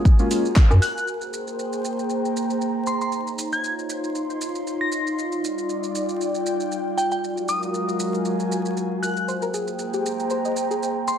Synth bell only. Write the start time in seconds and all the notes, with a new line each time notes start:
0.82 F#6
2.87 C6
3.02 C6
3.53 G#6
4.81 A#6
6.97 G5
7.12 G5
7.49 D#6
9.03 F#6
11.08 C6